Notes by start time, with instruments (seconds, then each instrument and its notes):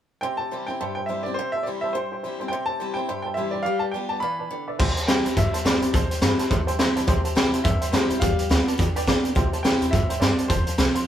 0.21 steel-string acoustic guitar C3, honky-tonk piano C5 E5 G5, upright piano G5
0.37 honky-tonk piano C5 E5 G5, upright piano A5
0.51 steel-string acoustic guitar E3 G3 C4 E4, honky-tonk piano C5 E5 G5
0.67 steel-string acoustic guitar C4 E4, honky-tonk piano C5 E5 G5, upright piano G5
0.80 steel-string acoustic guitar G2, honky-tonk piano C5 E5 A5
0.95 honky-tonk piano C5 E5 G5, upright piano G5
1.06 steel-string acoustic guitar E3 G3 C4, honky-tonk piano C5 E5 G5, upright piano E5
1.10 steel-string acoustic guitar E4
1.23 steel-string acoustic guitar E4, honky-tonk piano C5 E5, upright piano D5
1.27 steel-string acoustic guitar C4, honky-tonk piano G5
1.34 upright piano C5
1.39 steel-string acoustic guitar C3, honky-tonk piano C5 E5 G5
1.52 honky-tonk piano C5 E5 A5, upright piano E5
1.63 steel-string acoustic guitar E3 G3, honky-tonk piano C5 E5 G5, upright piano D5
1.67 steel-string acoustic guitar C4 E4
1.81 honky-tonk piano C5 E5 A5, upright piano E5
1.93 steel-string acoustic guitar G2, upright piano C5, honky-tonk piano C5 E5 G5
2.12 honky-tonk piano C5 E5 G5
2.23 steel-string acoustic guitar E3 G3 C4 E4, honky-tonk piano C5 E5 G5
2.40 steel-string acoustic guitar C4 E4, honky-tonk piano C5 E5 G5
2.48 honky-tonk piano C5 E5 G5, upright piano G5
2.53 steel-string acoustic guitar C3
2.66 honky-tonk piano C5 E5 A5, upright piano A5
2.80 steel-string acoustic guitar E3 G3 C4 E4, honky-tonk piano C5 E5 G5
2.94 steel-string acoustic guitar E4, honky-tonk piano C5 E5 G5, upright piano G5
2.99 steel-string acoustic guitar C4
3.09 steel-string acoustic guitar G2, honky-tonk piano C5 E5 G5
3.22 honky-tonk piano C5 E5 A5, upright piano G5
3.34 steel-string acoustic guitar E3 G3 C4, honky-tonk piano C5 E5 A5, upright piano E5
3.39 steel-string acoustic guitar E4
3.51 honky-tonk piano C5 E5 G5, upright piano D5
3.63 steel-string acoustic guitar G3, honky-tonk piano B4 D5 G5, upright piano F5
3.79 honky-tonk piano B4 D5 G5, upright piano A5
3.91 steel-string acoustic guitar G3 B3, honky-tonk piano B4 D5 A5, upright piano G5
3.96 steel-string acoustic guitar F4
4.09 honky-tonk piano B4 D5 G5, upright piano A5
4.20 steel-string acoustic guitar E3, honky-tonk piano B4 D5 F5, upright piano B5
4.39 honky-tonk piano B4 D5 A5
4.51 steel-string acoustic guitar D3, honky-tonk piano B4 D5 G5
4.67 honky-tonk piano B4 D5 E5
4.79 upright bass C2, steel-string acoustic guitar C3, honky-tonk piano C5 E5 G5, kick, crash
4.96 honky-tonk piano C5 E5 G5, muted upright bass stroke, closed hi-hat
5.07 upright bass C2, steel-string acoustic guitar E3 G3 C4 E4, honky-tonk piano C5 E5 A5, upright piano G5, snare, closed hi-hat
5.25 upright bass E2, steel-string acoustic guitar C4 E4, honky-tonk piano C5 E5 G5, closed hi-hat
5.37 upright bass G2, steel-string acoustic guitar G2, honky-tonk piano C5 E5 A5, upright piano E5, kick, closed hi-hat
5.54 honky-tonk piano C5 E5 A5, muted upright bass stroke, closed hi-hat
5.65 upright bass A2, steel-string acoustic guitar E3 G3 C4 E4, honky-tonk piano C5 E5 G5, upright piano D5, snare, closed hi-hat
5.82 steel-string acoustic guitar C4 E4, honky-tonk piano C5 E5 G5, muted upright bass stroke, closed hi-hat
5.93 upright bass C2, steel-string acoustic guitar C3, honky-tonk piano C5 E5 A5, upright piano C5, kick, closed hi-hat
6.11 honky-tonk piano C5 E5 G5, muted upright bass stroke, closed hi-hat
6.21 upright bass G2, steel-string acoustic guitar E3 G3 C4 E4, honky-tonk piano C5 E5 G5, snare, closed hi-hat
6.38 steel-string acoustic guitar C4 E4, honky-tonk piano C5 E5 A5, muted upright bass stroke, snare, closed hi-hat
6.50 steel-string acoustic guitar G2, upright bass A2, honky-tonk piano C5 E5 G5, kick, closed hi-hat
6.67 honky-tonk piano C5 E5 G5 A5, muted upright bass stroke, closed hi-hat
6.79 upright bass E2, steel-string acoustic guitar E3 G3 C4 E4, honky-tonk piano C5 E5 G5, snare, closed hi-hat
6.96 upright bass C2, honky-tonk piano C5 E5 A5, closed hi-hat
7.07 upright bass C2, steel-string acoustic guitar C3, honky-tonk piano C5 E5 G5, kick, closed hi-hat
7.24 honky-tonk piano C5 E5 A5, muted upright bass stroke, closed hi-hat
7.35 upright bass C2, steel-string acoustic guitar E3 G3 C4 E4, honky-tonk piano C5 E5, upright piano G5, snare, closed hi-hat
7.52 upright bass E2, steel-string acoustic guitar C4 E4, honky-tonk piano C5 E5 A5, closed hi-hat
7.64 steel-string acoustic guitar G2, upright bass G2, honky-tonk piano C5 G5, upright piano E5, kick, closed hi-hat
7.81 honky-tonk piano C5 E5 G5, muted upright bass stroke, closed hi-hat
7.92 upright bass A2, steel-string acoustic guitar E3 G3 C4 E4, upright piano C5, honky-tonk piano C5 E5 A5, snare, closed hi-hat
8.10 steel-string acoustic guitar C4 E4, honky-tonk piano C5 E5 G5, muted upright bass stroke, closed hi-hat
8.20 upright bass G1, steel-string acoustic guitar G3, honky-tonk piano B4 D5 G5, upright piano F5, kick, closed hi-hat
8.38 honky-tonk piano B4 D5 G5, muted upright bass stroke, closed hi-hat
8.49 upright bass D2, steel-string acoustic guitar G3 B3 F4, honky-tonk piano B4 D5 G5, snare, closed hi-hat
8.66 steel-string acoustic guitar B3 F4, honky-tonk piano B4 D5 A5, closed hi-hat
8.78 upright bass E2, steel-string acoustic guitar D3, honky-tonk piano B4 D5 G5, kick, closed hi-hat
8.95 honky-tonk piano B4 D5 G5, muted upright bass stroke, closed hi-hat
9.07 upright bass B1, steel-string acoustic guitar G3 B3 F4, honky-tonk piano B4 D5 G5, kick, snare, closed hi-hat
9.24 upright bass B1, steel-string acoustic guitar B3 F4, honky-tonk piano B4 D5 G5, closed hi-hat
9.35 upright bass C2, steel-string acoustic guitar C3, honky-tonk piano C5 E5 G5, kick, closed hi-hat
9.53 honky-tonk piano C5 E5 A5, closed hi-hat
9.63 upright bass C2, steel-string acoustic guitar E3 G3 C4 E4, honky-tonk piano C5 E5 G5, upright piano G5, snare, closed hi-hat
9.81 upright bass E2, steel-string acoustic guitar C4 E4, honky-tonk piano C5 E5 G5, closed hi-hat
9.91 upright bass G2, steel-string acoustic guitar A2, honky-tonk piano C5 E5 G5, upright piano E5, kick, closed hi-hat
10.10 honky-tonk piano C5 E5 G5, muted upright bass stroke, closed hi-hat
10.20 upright bass G2, steel-string acoustic guitar G2, honky-tonk piano C5 E5 A5, upright piano D5, snare, closed hi-hat
10.38 honky-tonk piano C5 E5 A5, muted upright bass stroke, closed hi-hat
10.48 upright bass F1, steel-string acoustic guitar F2, upright piano C5, honky-tonk piano C5 F5 A5, kick, closed hi-hat
10.67 honky-tonk piano C5 F5 A5, closed hi-hat
10.78 upright bass C2, steel-string acoustic guitar F3 A3 C4 F4, honky-tonk piano C5 F5 B5, snare, closed hi-hat
10.95 steel-string acoustic guitar C4 F4, honky-tonk piano C5 F5 C6, muted upright bass stroke, closed hi-hat